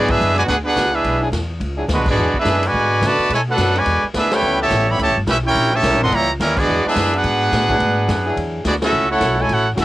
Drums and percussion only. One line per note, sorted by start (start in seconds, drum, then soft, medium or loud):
0.08 kick loud
0.08 crash medium
0.20 hi-hat pedal medium
0.38 ride medium
0.48 kick soft
0.48 ride medium
0.76 kick soft
0.76 snare medium
0.76 hi-hat pedal medium
0.76 ride medium
1.04 kick soft
1.04 ride medium
1.32 kick soft
1.32 snare medium
1.32 hi-hat pedal medium
1.32 ride medium
1.60 kick soft
1.60 ride medium
1.89 kick soft
1.89 snare medium
1.89 hi-hat pedal medium
1.89 ride medium
2.06 kick loud
2.06 crash loud
2.34 kick medium
2.45 kick soft
2.45 snare medium
2.45 hi-hat pedal medium
2.45 ride medium
2.63 ride medium
2.73 kick soft
3.02 kick soft
3.02 snare medium
3.02 hi-hat pedal medium
3.02 ride medium
3.30 kick soft
3.30 ride medium
3.58 kick soft
3.58 snare medium
3.58 hi-hat pedal medium
3.58 ride medium
3.76 ride medium
3.86 kick soft
3.86 ride medium
4.14 kick soft
4.14 snare medium
4.14 hi-hat pedal medium
4.14 ride medium
4.31 snare loud
4.31 ride medium
4.70 kick soft
4.70 snare medium
4.70 hi-hat pedal medium
4.70 ride medium
4.98 kick soft
4.98 ride medium
5.27 kick soft
5.27 snare medium
5.27 hi-hat pedal medium
5.27 ride medium
5.55 kick soft
5.55 ride medium
5.83 kick soft
5.83 snare medium
5.83 hi-hat pedal medium
5.83 ride medium
6.12 kick soft
6.12 ride medium
6.40 kick soft
6.40 snare medium
6.40 hi-hat pedal medium
6.40 ride medium
6.57 kick loud
6.57 crash loud
6.96 kick soft
6.96 snare medium
6.96 hi-hat pedal medium
6.96 ride medium
7.13 ride medium
7.24 kick soft
7.24 ride medium
7.52 kick soft
7.52 snare medium
7.52 hi-hat pedal medium
7.52 ride medium
7.69 kick medium
7.69 ride medium
7.80 kick soft
7.80 ride medium
8.08 kick soft
8.08 snare medium
8.08 hi-hat pedal medium
8.08 ride medium
8.37 kick soft
8.37 ride medium
8.65 kick soft
8.65 snare medium
8.65 hi-hat pedal medium
8.65 ride medium
8.82 snare loud
8.82 ride medium
9.21 kick soft
9.21 snare medium
9.21 hi-hat pedal medium
9.21 ride medium
9.49 kick soft
9.49 ride medium
9.77 kick soft
9.77 snare medium
9.77 hi-hat pedal medium
9.77 ride medium